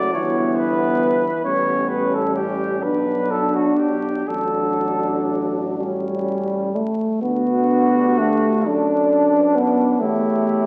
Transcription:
Already playing: tuba F#1, euphonium F#3, trombone section A3, french horn section F#4, flugelhorn D5
0.14 tuba G1, euphonium E3, trombone section B3, french horn section E4, flugelhorn C#5
0.57 flugelhorn B4
1.44 tuba A1, euphonium G3, trombone section B3, french horn section C#4, flugelhorn C#5
1.88 flugelhorn B4
2.13 trombone section C#4, flugelhorn A4
2.36 flugelhorn G4
2.81 tuba B1, euphonium F#3, french horn section D4, trombone section D4, flugelhorn B4
3.31 flugelhorn A4
3.55 flugelhorn F#4
3.77 flugelhorn G4
4.28 tuba A1, euphonium F#3, trombone section D4, french horn section F#4, flugelhorn A4
5.79 euphonium G3, trombone section C#4
6.75 euphonium A3
7.22 tuba D2, euphonium B3, trombone section D4, french horn section F#4, flugelhorn F#4
7.93 french horn section G4
8.18 euphonium A3
8.67 tuba F#2, euphonium D4, trombone section D4, flugelhorn D4, french horn section A4
9.34 french horn section B4
9.55 euphonium B3
9.99 tuba E2, euphonium A3, flugelhorn E4, trombone section G4, french horn section C#5

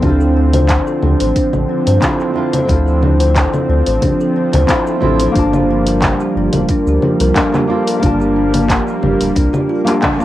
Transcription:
Already playing: analog synth pad D3 F3 C4
0.00 analog synth bass D2, nylon-string guitar C4 E4, kalimba D4, kick, open hi-hat, low conga, cabasa
0.04 nylon-string guitar F4 A4
0.20 kalimba A4, cabasa
0.37 kalimba D4
0.53 kalimba C5, open hi-hat, low conga, cabasa
0.69 kalimba D4, kick, clap, open hi-hat, cabasa
0.87 kalimba A4, cabasa
1.03 analog synth bass D2, kalimba D4, low conga
1.20 analog synth bass A1, kalimba C5, open hi-hat, cabasa
1.36 kalimba D4, kick, open hi-hat, cabasa
1.53 analog synth bass A1, kalimba A4, low conga, cabasa
1.69 kalimba D4
1.87 analog synth bass G2, kalimba C5, open hi-hat, cabasa
2.00 nylon-string guitar C4 E4 F4, kalimba D4, kick, clap, open hi-hat, low conga, cabasa
2.04 nylon-string guitar A4
2.20 kalimba A4, clap, cabasa
2.34 nylon-string guitar C4 E4 F4 A4, kalimba D4
2.53 kalimba C5, open hi-hat, low conga, cabasa
2.65 analog synth bass D2, nylon-string guitar C4 E4, kalimba D4, kick
2.69 nylon-string guitar F4 A4, open hi-hat, cabasa
2.86 kalimba A4, cabasa
3.02 kalimba D4, low conga
3.20 kalimba C5, open hi-hat, cabasa
3.35 kalimba D4, kick, clap, open hi-hat, cabasa
3.53 kalimba A4, low conga, cabasa
3.69 analog synth bass D2, kalimba D4
3.86 analog synth bass A1, kalimba C5, open hi-hat, cabasa
4.02 kalimba D4, kick, open hi-hat, low conga, cabasa
4.21 kalimba A4, cabasa
4.36 kalimba D4
4.53 analog synth bass D2, kalimba C5, clap, open hi-hat, low conga, cabasa
4.67 nylon-string guitar C4 E4 F4 A4, kalimba D4, kick, clap, open hi-hat, cabasa
4.87 kalimba A4, cabasa
5.00 analog synth bass A1, nylon-string guitar C4 E4 F4 A4, kalimba D4, low conga
5.20 kalimba C5, open hi-hat, cabasa
5.32 nylon-string guitar A#3 D4, kick, open hi-hat
5.36 analog synth bass G1, analog synth pad G3 A#3, kalimba D4, nylon-string guitar F4 A5, cabasa
5.53 kalimba G4, low conga, cabasa
5.71 kalimba D4
5.87 kalimba A#4, open hi-hat, cabasa
6.02 kalimba D4, kick, clap, open hi-hat, low conga, cabasa
6.20 kalimba G4, cabasa
6.36 analog synth bass G1, kalimba D4
6.53 analog synth bass D1, kalimba A#4, open hi-hat, low conga, cabasa
6.69 kalimba D4, kick, open hi-hat, cabasa
6.87 analog synth bass D2, kalimba G4, cabasa
7.02 kalimba D4, low conga
7.20 analog synth bass C2, kalimba A#4, open hi-hat, cabasa
7.35 nylon-string guitar A#3 D4 F4 A4, kalimba D4, kick, clap, open hi-hat, cabasa
7.54 kalimba G4, clap, low conga, cabasa
7.67 nylon-string guitar A#3 D4 F4 A4, kalimba D4
7.87 kalimba A#4, open hi-hat, cabasa
7.99 analog synth bass G1, nylon-string guitar A#3 D4, kalimba D4, kick, open hi-hat, low conga, cabasa
8.04 nylon-string guitar F4 A5
8.20 kalimba G4, cabasa
8.36 kalimba D4
8.54 kalimba A#4, open hi-hat, low conga, cabasa
8.69 kalimba D4, kick, clap, open hi-hat, cabasa
8.87 kalimba G4, cabasa
9.03 analog synth bass G1, kalimba D4, low conga
9.20 analog synth bass D1, kalimba A#4, open hi-hat, cabasa
9.36 analog synth bass C2, kalimba D4, kick, open hi-hat, cabasa
9.53 kalimba G4, low conga, cabasa
9.69 kalimba F4
9.85 nylon-string guitar A#3 D4 F4 A#4, kalimba G4, clap, open hi-hat, cabasa
10.02 kalimba D4, kick, clap, open hi-hat, low conga, cabasa
10.19 nylon-string guitar A#3 D4 F4, kalimba D4, cabasa

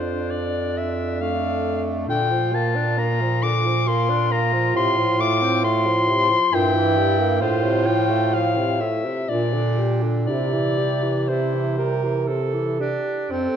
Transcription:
Already playing: bass clarinet F2, tenor saxophone D4, alto saxophone F4, soprano saxophone C5
0.31 soprano saxophone D5
0.77 soprano saxophone E5
1.21 tenor saxophone A3, alto saxophone D4, soprano saxophone F5
2.07 bass clarinet A#2, tenor saxophone D3, alto saxophone F4, soprano saxophone G5
2.30 tenor saxophone F3
2.52 tenor saxophone A#3, soprano saxophone A5
2.75 tenor saxophone D4
2.98 tenor saxophone A#3, soprano saxophone A#5
3.21 tenor saxophone F3
3.43 tenor saxophone D3, soprano saxophone D6
3.66 tenor saxophone F3
3.87 tenor saxophone A#3, soprano saxophone C6
4.09 tenor saxophone D4
4.31 tenor saxophone A#3, soprano saxophone A#5
4.53 tenor saxophone F3
4.74 bass clarinet A2, tenor saxophone C3, soprano saxophone C6
4.97 tenor saxophone F3
5.19 tenor saxophone A3, soprano saxophone D6
5.41 tenor saxophone C4
5.63 tenor saxophone A3, soprano saxophone C6
5.86 tenor saxophone F3
6.08 tenor saxophone C3
6.30 tenor saxophone F3
6.52 bass clarinet G2, tenor saxophone A#2, alto saxophone E4, soprano saxophone G5
6.75 tenor saxophone E3
6.97 tenor saxophone G3
7.19 tenor saxophone A#3
7.41 bass clarinet A2, tenor saxophone A2, alto saxophone F4, soprano saxophone C5
7.64 tenor saxophone C3
7.86 tenor saxophone F3, soprano saxophone G5
8.10 tenor saxophone A3
8.34 tenor saxophone F3, soprano saxophone F5
8.57 tenor saxophone C3
8.81 tenor saxophone A2, soprano saxophone E5
9.05 tenor saxophone C3
9.29 bass clarinet A#2, tenor saxophone A#2, alto saxophone D4, soprano saxophone D5
9.54 tenor saxophone D3
9.78 tenor saxophone G3
10.02 tenor saxophone D3
10.27 tenor saxophone C3, bass clarinet C3, alto saxophone E4, soprano saxophone D5
10.53 tenor saxophone E3
10.78 tenor saxophone G3
11.03 tenor saxophone E3
11.28 tenor saxophone C3, alto saxophone E4, soprano saxophone C5
11.54 tenor saxophone E3
11.78 tenor saxophone G3, alto saxophone A#4
12.04 tenor saxophone E3
12.28 tenor saxophone C3, alto saxophone A4
12.54 tenor saxophone E3
12.80 tenor saxophone D4, alto saxophone G4
13.31 bass clarinet F2, tenor saxophone C4, soprano saxophone A4, alto saxophone A4

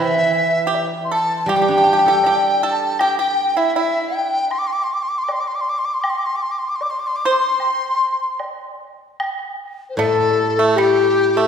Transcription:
Already playing: guzheng E3, pipa E4, dizi E5
0.00 dizi E5
0.66 pipa G4, dizi G5
0.74 low woodblock
1.04 dizi C6
1.11 pipa A4, dizi A5
1.42 guzheng G3, dizi A5
1.48 pipa G4, dizi G5, high woodblock
1.56 pipa G4
1.62 pipa G4
1.68 guzheng D4, pipa G4
1.78 pipa G4
1.84 pipa G4, guzheng G4
1.93 pipa G4
1.99 pipa G4
2.06 pipa G4, guzheng A4
2.23 pipa G4, guzheng D5, dizi G5, high woodblock, low woodblock
2.63 pipa A4, dizi A5
2.99 pipa G4, dizi G5, high woodblock
3.18 pipa G4, dizi G5
3.57 pipa E4, dizi E5
3.76 pipa E4, dizi E5, low woodblock
4.13 dizi G5
4.22 pipa D4
4.51 dizi C6, high woodblock
4.59 dizi D6
4.67 dizi C6
4.73 dizi D6
4.84 dizi C6
4.93 dizi D6
5.02 dizi C6
5.09 dizi D6
5.18 dizi C6
5.24 dizi D6
5.28 dizi C6, high woodblock, low woodblock
5.40 dizi D6
5.48 dizi C6
5.55 dizi D6
5.61 dizi C6
5.69 dizi D6
5.79 dizi C6
5.85 dizi D6
5.94 dizi C6
6.01 dizi D6, high woodblock
6.10 dizi C6
6.18 dizi D6
6.26 dizi C6
6.36 dizi D6
6.42 dizi C6
6.51 dizi D6
6.59 dizi C6
6.69 dizi D6
6.76 dizi C6
6.81 dizi D6, low woodblock
6.90 dizi C6
7.00 dizi D6
7.07 dizi C6
7.16 dizi D6
7.25 pipa C5, dizi C6
7.60 high woodblock
8.39 high woodblock, low woodblock
9.20 high woodblock
9.89 dizi C5
9.96 guzheng A2, pipa A3, dizi A4, low woodblock
10.34 pipa G3
10.56 pipa A3, dizi A4
10.69 dizi A4
10.76 pipa G3, dizi G4, high woodblock
11.36 pipa A3, dizi A4

